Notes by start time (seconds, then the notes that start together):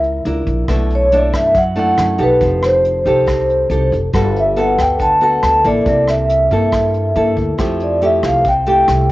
Already playing: C#2 E4 A#4 E5
0.04 closed hi-hat
0.25 C#2 D4 E4 A#4, closed hi-hat
0.47 A#1, kick, closed hi-hat
0.68 B1 B2 A3 D4 E4, kick, cross-stick, closed hi-hat
0.90 closed hi-hat
0.95 C#5
1.12 A3 D4 E4 D5, closed hi-hat
1.33 F#2 E5, kick, cross-stick, closed hi-hat
1.55 F#3 F#5, kick, closed hi-hat
1.76 A3 D4 E4 F#5, closed hi-hat
1.98 F#2, cross-stick, closed hi-hat
2.18 B1 D#4 G4 A4, kick, closed hi-hat
2.23 B4
2.41 F1 F3, kick, closed hi-hat
2.63 C5, cross-stick, closed hi-hat
2.85 closed hi-hat
3.05 C2 D#4 G4 A4, kick, closed hi-hat
3.26 C3, kick, cross-stick, closed hi-hat
3.50 closed hi-hat
3.70 C2 D#4 G4 A4, closed hi-hat
3.92 F1, kick, closed hi-hat
4.13 G1 G3 B3 F#4 A4, kick, cross-stick, closed hi-hat
4.36 E5, closed hi-hat
4.56 B3 F#4 A4 F#5, closed hi-hat
4.78 D2 G5, kick, cross-stick, closed hi-hat
4.99 D3 A5, kick, closed hi-hat
5.21 B3 F#4 A4 A5, closed hi-hat
5.43 D2, cross-stick, closed hi-hat
5.64 A1 A#3 E4 A4 D5, kick, closed hi-hat
5.86 C2 C3, kick, closed hi-hat
6.08 E5, cross-stick, closed hi-hat
6.30 closed hi-hat
6.51 G2 A#3 E4 A4, kick, closed hi-hat
6.72 G2, kick, cross-stick, closed hi-hat
6.94 closed hi-hat
7.16 G2 A#3 E4 A4, closed hi-hat
7.37 D2, kick, closed hi-hat
7.58 F2 F3 A3 E4 G4, kick, cross-stick, closed hi-hat
7.80 D5, closed hi-hat
8.01 A3 E4 G4 E5, closed hi-hat
8.23 C2 F5, kick, cross-stick, closed hi-hat
8.44 C3, kick, closed hi-hat
8.48 G5
8.66 A3 E4 G4 G5, closed hi-hat
8.88 C2, cross-stick, closed hi-hat